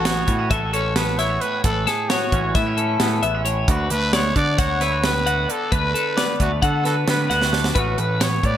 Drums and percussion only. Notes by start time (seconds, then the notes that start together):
0.05 snare, closed hi-hat
0.28 kick, closed hi-hat
0.51 kick, closed hi-hat
0.74 closed hi-hat
0.96 snare, closed hi-hat
1.19 snare, closed hi-hat
1.41 closed hi-hat
1.64 kick, closed hi-hat
1.87 snare, closed hi-hat
2.10 snare, closed hi-hat
2.32 kick, closed hi-hat
2.55 kick, snare, closed hi-hat
2.78 closed hi-hat
3.00 snare, closed hi-hat
3.23 closed hi-hat
3.46 closed hi-hat
3.68 kick, closed hi-hat
3.90 closed hi-hat
4.13 snare, closed hi-hat
4.36 kick, closed hi-hat
4.58 kick, snare, closed hi-hat
4.81 snare, closed hi-hat
5.04 snare, closed hi-hat
5.27 closed hi-hat
5.50 closed hi-hat
5.72 kick, closed hi-hat
5.95 closed hi-hat
6.18 snare, closed hi-hat
6.40 kick, closed hi-hat
6.63 kick, closed hi-hat
6.85 snare, closed hi-hat
7.08 snare, closed hi-hat
7.31 snare, closed hi-hat
7.42 snare
7.53 snare
7.64 snare
7.76 kick, closed hi-hat
7.98 closed hi-hat
8.21 snare, closed hi-hat
8.43 kick, closed hi-hat